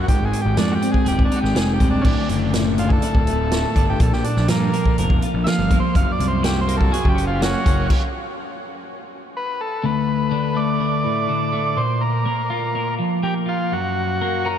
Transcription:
0.03 transistor combo organ F#4
0.08 picked electric bass G#1, clean electric guitar G#2, transistor combo organ G4, kick, closed hi-hat
0.22 picked electric bass G#1, transistor combo organ G#4
0.33 closed hi-hat
0.42 picked electric bass G#1, transistor combo organ G4
0.57 picked electric bass F2, clean electric guitar G#3, transistor combo organ D4, snare, closed hi-hat
0.72 transistor combo organ F#4 G4
0.82 clean electric guitar C4, closed hi-hat
0.92 transistor combo organ G#4, kick
1.05 picked electric bass D#1, transistor combo organ G4, clean electric guitar G#4, closed hi-hat
1.19 kick
1.25 transistor combo organ D4
1.32 clean electric guitar D#4, closed hi-hat
1.36 transistor combo organ F#4
1.41 picked electric bass G#1, transistor combo organ G4, snare
1.55 picked electric bass F1, clean electric guitar G#3, transistor combo organ G#4, snare, closed hi-hat
1.74 transistor combo organ G4
1.80 picked electric bass D#1, clean electric guitar C4, kick, closed hi-hat
1.91 transistor combo organ D4
2.01 picked electric bass D1, clean electric guitar D2, transistor combo organ C#4, kick, crash
2.05 transistor combo organ D4
2.29 picked electric bass F#1, closed hi-hat
2.54 clean electric guitar A2, snare, closed hi-hat
2.78 clean electric guitar D3, transistor combo organ F4, closed hi-hat
2.88 transistor combo organ G#4, kick
2.93 transistor combo organ A4
3.02 clean electric guitar E4, closed hi-hat
3.15 picked electric bass D1, kick
3.27 clean electric guitar A3, closed hi-hat
3.52 clean electric guitar A2, snare, closed hi-hat
3.76 picked electric bass G1, clean electric guitar D3, kick, closed hi-hat
3.90 transistor combo organ G4
4.00 picked electric bass A#1, clean electric guitar A#2, transistor combo organ A4, kick, closed hi-hat
4.12 picked electric bass A#1, transistor combo organ G4, snare
4.24 transistor combo organ D4, closed hi-hat
4.36 picked electric bass A#1, snare
4.48 picked electric bass G2, clean electric guitar F3, transistor combo organ A#3, snare, closed hi-hat
4.73 clean electric guitar A#3, closed hi-hat
4.85 kick
4.98 picked electric bass F1, clean electric guitar A#4, closed hi-hat
5.10 kick
5.22 clean electric guitar F4, closed hi-hat
5.34 picked electric bass A#1
5.44 clean electric guitar F3, transistor combo organ E5 F5, snare, closed hi-hat
5.59 picked electric bass G1
5.71 clean electric guitar A#3, kick, closed hi-hat
5.80 transistor combo organ C5
5.95 picked electric bass F#1, clean electric guitar F#2, transistor combo organ F5, kick, closed hi-hat
6.12 transistor combo organ D5
6.20 picked electric bass C2, closed hi-hat
6.27 transistor combo organ C5
6.43 clean electric guitar F#3, transistor combo organ G4, snare, closed hi-hat
6.61 transistor combo organ C5
6.68 clean electric guitar A#3, closed hi-hat
6.77 transistor combo organ A4, kick
6.92 clean electric guitar F#4, transistor combo organ G#4, closed hi-hat
7.05 picked electric bass F#1, kick
7.09 transistor combo organ G4
7.16 clean electric guitar C#4, closed hi-hat
7.27 transistor combo organ F4
7.41 clean electric guitar F#3, transistor combo organ C#4 F#4, snare, closed hi-hat
7.65 picked electric bass F#1, clean electric guitar A#3, kick, closed hi-hat
7.90 kick, crash
9.37 transistor combo organ B4
9.61 transistor combo organ A4
9.83 clean electric guitar D2, transistor combo organ B4
10.31 clean electric guitar D3
10.55 clean electric guitar A3, transistor combo organ D5
10.80 clean electric guitar D3
11.04 clean electric guitar A2
11.28 clean electric guitar D3
11.53 clean electric guitar A3
11.76 clean electric guitar A#2, transistor combo organ C5
12.01 transistor combo organ A#4
12.26 clean electric guitar A#3
12.50 clean electric guitar F4
12.75 clean electric guitar A#3
12.99 clean electric guitar F3
13.23 clean electric guitar A#3, transistor combo organ G4
13.46 clean electric guitar F4, transistor combo organ F4
13.72 clean electric guitar F#2, transistor combo organ F#4
14.21 clean electric guitar A#3
14.45 clean electric guitar C#4, transistor combo organ A#4

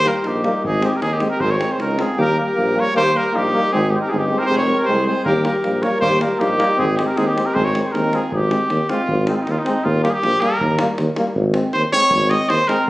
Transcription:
0.04 euphonium G3, trombone A#3, alto saxophone G4, trumpet A#4, davul high
0.16 davul high
0.24 tuba A#1, alto saxophone D#4, trumpet G4, davul high
0.44 euphonium G3, trombone A#3, davul high
0.63 tuba G#1, alto saxophone D#4, trumpet G#4, davul low
0.75 davul high
0.81 euphonium G#3, trombone C4, alto saxophone D#4, davul high
0.85 trumpet G4
0.94 alto saxophone G4, trumpet A#4, davul high
1.00 tuba D#2, alto saxophone D#4, trumpet G#4, davul high
1.11 alto saxophone D#4, trumpet G4
1.20 euphonium G#3, trombone C4, davul high
1.30 alto saxophone G4, trumpet A#4
1.40 tuba G#1, alto saxophone G#4, trumpet C5, davul low
1.50 alto saxophone A#4, trumpet C#5, davul high
1.58 euphonium G#3, trombone C4, davul high
1.70 alto saxophone G#4, trumpet C5
1.79 tuba C#2, alto saxophone D#4, trumpet A#4, davul high
1.91 davul high
1.97 euphonium G#3, trombone C4, alto saxophone F4, davul high
2.01 trumpet G#4
2.09 davul high
2.17 tuba D#2, euphonium G3, trombone A#3, alto saxophone G4, trumpet A#4
2.36 euphonium G3, trombone A#3, alto saxophone G4, trumpet A#4
2.55 tuba A#1, euphonium G3, trombone A#3
2.75 euphonium G3, trombone A#3, alto saxophone A#4
2.80 trumpet C#5
2.94 tuba D#2, euphonium G3, trombone A#3, alto saxophone G4, trumpet C5
3.14 euphonium G3, trombone A#3, alto saxophone G4, trumpet A#4
3.33 tuba A#1, euphonium G3, trombone A#3, alto saxophone D#4, trumpet G4
3.52 euphonium G3, trombone A#3
3.72 tuba G#1, euphonium G#3, trombone C4, alto saxophone D#4, trumpet G#4
3.90 euphonium G#3, trombone C4, trumpet G4
3.94 alto saxophone D#4
4.01 alto saxophone G4, trumpet A#4
4.09 tuba G1, euphonium G#3, trombone C4, alto saxophone D#4, trumpet G#4
4.19 alto saxophone D#4, trumpet G4
4.30 euphonium G#3, trombone C4
4.36 alto saxophone G#4, trumpet A#4 C5
4.43 alto saxophone G4, trumpet C5
4.48 tuba F1, euphonium G#3, trombone C4, alto saxophone G#4
4.57 alto saxophone A#4, trumpet C#5
4.68 euphonium G#3, trombone C4
4.77 trumpet A#4
4.81 alto saxophone G4, trumpet C5
4.86 tuba C2, euphonium G#3, trombone C4
4.91 alto saxophone G#4
5.06 euphonium G#3, trombone C4, alto saxophone G#4, trumpet C5
5.24 tuba D#2, euphonium G3, trombone A#3, alto saxophone G4, trumpet A#4, davul low
5.36 davul high
5.44 euphonium G3, trombone A#3, alto saxophone G4, trumpet A#4, davul high
5.55 davul high
5.63 tuba A#1, euphonium G3, trombone A#3, davul high
5.82 euphonium G3, trombone A#3, alto saxophone A#4, trumpet C#5, davul high
6.00 tuba D#2, euphonium G3, trombone A#3, alto saxophone G4, trumpet C5, davul low
6.13 davul high
6.19 euphonium G3, trombone A#3, alto saxophone G4, trumpet A#4, davul high
6.32 davul high
6.38 tuba A#1, euphonium G3, trombone A#3, alto saxophone D#4, trumpet G4, davul high
6.58 euphonium G3, trombone A#3, davul high
6.77 tuba G#1, euphonium G#3, trombone C4, alto saxophone D#4, trumpet G#4, davul low
6.89 davul high
6.97 euphonium G#3, trombone C4, alto saxophone D#4, trumpet G4, davul high
7.06 alto saxophone G4, trumpet A#4, davul high
7.17 tuba D#2, euphonium G#3, trombone C4, alto saxophone D#4, trumpet G#4, davul high
7.27 alto saxophone D#4, trumpet G4
7.35 euphonium G#3, trombone C4, davul high
7.45 alto saxophone G4, trumpet A#4
7.54 tuba G#1, euphonium G#3, trombone C4, alto saxophone G#4, trumpet C5, davul low
7.64 alto saxophone A#4, trumpet C#5
7.75 euphonium G#3, trombone C4, davul high
7.82 alto saxophone G#4 A#4, trumpet C5 C#5
7.86 davul high
7.92 tuba D#2, euphonium G#3, trombone C4, alto saxophone D#4, trumpet A#4, davul high
8.04 davul high
8.12 euphonium G#3, trombone C4, alto saxophone F4, trumpet G#4, davul high
8.32 tuba G#1, trumpet G4, davul low
8.50 euphonium G#3, trombone C4, davul high
8.70 tuba D#2, davul high
8.89 euphonium G#3, trombone C4, trumpet F4, davul high
9.09 tuba G#1, davul low
9.27 euphonium G#3, trombone C4, trumpet D#4, davul high
9.35 trumpet F4
9.43 trumpet D#4
9.47 tuba D#2, trumpet F4, davul high
9.59 trumpet D#4
9.65 euphonium G#3, trombone C4, davul high
9.84 tuba D#2, trumpet F4, davul low
10.02 euphonium G3, trombone A#3, trumpet G4, davul high
10.10 trumpet G4 G#4
10.23 tuba A#1, davul high
10.41 euphonium G3, trombone A#3, trumpet A#4, davul high
10.60 tuba D#2, davul low
10.71 davul high
10.79 euphonium G3, trombone A#3, davul high
10.98 tuba D#2, davul high
11.16 euphonium G3, trombone A#3, davul high
11.27 davul high
11.36 tuba G#1, davul low
11.54 euphonium G#3, trombone C4, davul high
11.73 tuba D#2, trumpet C5, davul high
11.93 euphonium G#3, trombone C4, trumpet C#5, davul high
12.11 tuba G#1, davul low
12.29 euphonium G#3, trombone C4, trumpet D#5, davul high
12.49 tuba D#2, trumpet C5, davul high
12.68 euphonium G#3, trombone C4, trumpet A#4, davul high

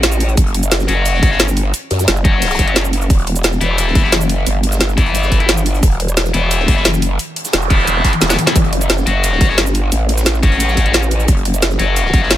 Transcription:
Already playing: wobble bass A1
0.03 snare, closed hi-hat, shaker
0.12 shaker
0.20 closed hi-hat, open hi-hat, shaker
0.28 closed hi-hat, shaker
0.37 wobble bass F#1, kick, closed hi-hat, shaker
0.47 closed hi-hat
0.54 closed hi-hat
0.63 closed hi-hat, shaker
0.71 snare, closed hi-hat, shaker
0.80 snare, shaker
0.88 wobble bass F#1, distorted electric guitar F#3 C#4 F#4, closed hi-hat
1.05 closed hi-hat, shaker
1.14 snare
1.23 wobble bass G1, kick, closed hi-hat
1.31 distorted electric guitar F#3 C#4 F#4, snare
1.40 snare, closed hi-hat, shaker
1.48 snare, shaker
1.57 closed hi-hat, open hi-hat, shaker
1.74 closed hi-hat, shaker
1.90 wobble bass F#2, closed hi-hat
1.99 snare, closed hi-hat, shaker
2.08 wobble bass F#1, snare, closed hi-hat, shaker
2.16 shaker
2.25 distorted electric guitar F#3 C#4 F#4, kick, closed hi-hat
2.42 snare, closed hi-hat, shaker
2.45 snare, closed hi-hat
2.50 snare, closed hi-hat, shaker
2.55 snare, closed hi-hat
2.59 wobble bass F#1, kick, closed hi-hat
2.67 distorted electric guitar F#3 C#4 F#4, closed hi-hat
2.75 snare, closed hi-hat, shaker
2.85 shaker
2.93 closed hi-hat, open hi-hat, shaker
3.01 closed hi-hat, shaker
3.10 wobble bass E1, kick, closed hi-hat, shaker
3.19 closed hi-hat
3.27 closed hi-hat
3.36 closed hi-hat, shaker
3.43 snare, closed hi-hat, shaker
3.52 snare, shaker
3.61 wobble bass E1, distorted electric guitar E3 B3 E4, closed hi-hat
3.78 closed hi-hat, shaker
3.87 snare
3.95 wobble bass F#1, kick, closed hi-hat
4.04 distorted electric guitar E3 B3 E4, snare
4.12 snare, closed hi-hat, shaker
4.21 snare, shaker
4.29 closed hi-hat, open hi-hat, shaker
4.46 wobble bass G1, closed hi-hat, shaker
4.63 closed hi-hat
4.72 snare, closed hi-hat, shaker
4.80 snare, closed hi-hat, shaker
4.89 shaker
4.97 distorted electric guitar E3 B3 E4, kick, closed hi-hat
5.06 closed hi-hat
5.15 closed hi-hat, shaker
5.23 snare, shaker
5.32 kick, closed hi-hat
5.40 distorted electric guitar E3 B3 E4, closed hi-hat
5.48 snare, closed hi-hat, shaker
5.57 shaker
5.66 closed hi-hat, open hi-hat, shaker
5.74 closed hi-hat, shaker
5.83 wobble bass E1, kick, closed hi-hat, shaker
5.91 closed hi-hat
6.00 closed hi-hat
6.08 closed hi-hat, shaker
6.17 snare, closed hi-hat, shaker
6.25 snare, shaker
6.34 wobble bass E1, distorted electric guitar E3 B3 E4, closed hi-hat
6.51 closed hi-hat, shaker
6.59 snare
6.68 wobble bass F#1, kick, closed hi-hat
6.76 distorted electric guitar E3 B3 E4, snare
6.85 snare, closed hi-hat, shaker
6.93 snare, shaker
7.02 closed hi-hat, open hi-hat, shaker
7.19 closed hi-hat, noise sweep, shaker
7.36 closed hi-hat
7.45 snare, closed hi-hat, shaker
7.53 wobble bass E1, snare, closed hi-hat, shaker
7.62 shaker
7.70 distorted electric guitar E3 B3 E4, kick, closed hi-hat
7.87 wobble bass E1, closed hi-hat, shaker
8.04 kick, snare, closed hi-hat
8.13 closed hi-hat
8.21 wobble bass E1, snare, closed hi-hat, shaker
8.25 snare, closed hi-hat
8.29 distorted electric guitar E3 B3 E4, snare, closed hi-hat, zap, shaker
8.34 snare, closed hi-hat
8.38 closed hi-hat, open hi-hat, shaker
8.47 distorted electric guitar E3 B3 E4, snare, shaker
8.56 wobble bass F#1, kick, closed hi-hat, shaker
8.64 closed hi-hat
8.73 closed hi-hat
8.81 closed hi-hat, shaker
8.89 snare, closed hi-hat, shaker
8.98 snare, shaker
9.06 wobble bass F#1, distorted electric guitar F#3 C#4 F#4, closed hi-hat
9.24 closed hi-hat, shaker
9.32 snare
9.41 wobble bass G1, kick, closed hi-hat
9.49 distorted electric guitar F#3 C#4 F#4, snare
9.58 snare, closed hi-hat, shaker
9.66 snare, shaker
9.74 closed hi-hat, open hi-hat, shaker
9.92 wobble bass A1, closed hi-hat, shaker
10.09 closed hi-hat
10.18 snare, closed hi-hat, shaker
10.25 snare, closed hi-hat, shaker
10.35 shaker
10.42 distorted electric guitar F#3 C#4 F#4, kick, closed hi-hat
10.52 closed hi-hat
10.60 closed hi-hat, shaker
10.69 snare, shaker
10.77 kick, closed hi-hat
10.86 distorted electric guitar F#3 C#4 F#4, closed hi-hat
10.93 snare, closed hi-hat, shaker
11.03 shaker
11.11 closed hi-hat, open hi-hat, shaker
11.20 closed hi-hat, shaker
11.28 wobble bass F#1, kick, closed hi-hat, shaker
11.37 closed hi-hat
11.45 closed hi-hat
11.54 closed hi-hat, shaker
11.62 snare, closed hi-hat, shaker
11.70 snare, shaker
11.79 wobble bass F#1, distorted electric guitar F#3 C#4 F#4, closed hi-hat
11.96 closed hi-hat, shaker
12.05 snare
12.14 wobble bass G1, kick, closed hi-hat
12.22 distorted electric guitar F#3 C#4 F#4, snare
12.30 snare, closed hi-hat, shaker

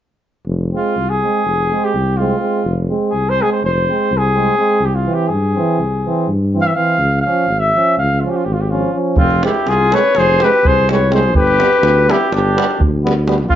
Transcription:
0.46 tuba F1
0.72 euphonium G#3, trombone C4, flugelhorn F4
0.96 tuba C2
1.09 flugelhorn G#4
1.22 euphonium G#3, trombone C4
1.45 tuba F1
1.70 euphonium G#3, trombone C4
1.84 flugelhorn G4
1.94 tuba C2
2.17 euphonium G#3, trombone C4, flugelhorn F4
2.39 euphonium G#3, trombone C4
2.64 tuba F1
2.89 euphonium G#3, trombone C4
3.10 tuba C2, flugelhorn G#4
3.29 flugelhorn C5
3.37 euphonium G#3, trombone C4
3.42 flugelhorn G#4
3.52 flugelhorn C5
3.62 tuba F1, flugelhorn C5
3.88 euphonium G#3, trombone C4
4.11 tuba C2
4.17 flugelhorn G#4
4.34 euphonium G#3, trombone C4
4.58 euphonium G#3, trombone C4
4.80 tuba C2
4.85 flugelhorn G4
4.95 flugelhorn F4
5.06 euphonium E3, trombone C4
5.14 flugelhorn G4
5.28 tuba G2, flugelhorn G#4
5.55 euphonium E3, trombone C4
5.78 tuba C2
6.05 euphonium E3, trombone C4
6.28 tuba G2
6.54 euphonium E3, trombone C4
6.61 flugelhorn F5
6.67 flugelhorn E5
6.75 euphonium E3, trombone C4, flugelhorn F5
6.98 tuba C#2
7.21 flugelhorn F5
7.25 euphonium F3, trombone C#4
7.47 tuba G#1
7.59 flugelhorn E5
7.74 euphonium F3, trombone C#4
7.98 tuba C#2, flugelhorn F5
8.20 euphonium F3, flugelhorn F4
8.24 trombone C#4
8.30 flugelhorn G4
8.37 flugelhorn F4
8.45 tuba G#1, flugelhorn G4
8.53 flugelhorn F4
8.61 flugelhorn G4
8.70 euphonium F3, trombone C#4, flugelhorn F4
8.94 euphonium F3, trombone C#4
9.16 tuba F1, trumpet C4, flugelhorn F4, davul low
9.31 davul high
9.41 euphonium G#3, trombone C4, flugelhorn G4, davul high
9.45 trumpet E4
9.54 davul high
9.67 tuba C2, trumpet F4, flugelhorn G#4, davul high
9.91 euphonium G#3, trombone C4, trumpet B4, flugelhorn C#5, davul high
10.03 davul high
10.15 tuba F1, trumpet G#4, flugelhorn C5, davul high
10.40 euphonium G#3, trombone C4, trumpet G4, flugelhorn B4, davul high
10.54 davul high
10.64 tuba C2, trumpet G#4, flugelhorn C5, davul low
10.89 euphonium G#3, trombone C4, trumpet B4, flugelhorn C#5, davul high
11.11 euphonium G#3, trombone C4, trumpet G#4, flugelhorn C5, davul high
11.23 davul high
11.34 tuba G1, trumpet G4, flugelhorn B4, davul low
11.47 davul high
11.60 euphonium G3, trombone B3, davul high
11.73 davul high
11.82 tuba D2, davul high
12.08 euphonium G3, trombone B3, trumpet E4, flugelhorn G4, davul high
12.21 davul high
12.31 tuba G1, trumpet D4, flugelhorn G4, davul high
12.55 euphonium G3, trombone B3, davul high
12.71 davul high
12.79 tuba D2, davul low
13.04 euphonium G3, trombone B3, davul high
13.27 euphonium G3, trombone B3, davul high
13.38 davul high
13.49 tuba F1, trumpet C4, flugelhorn F4, davul low

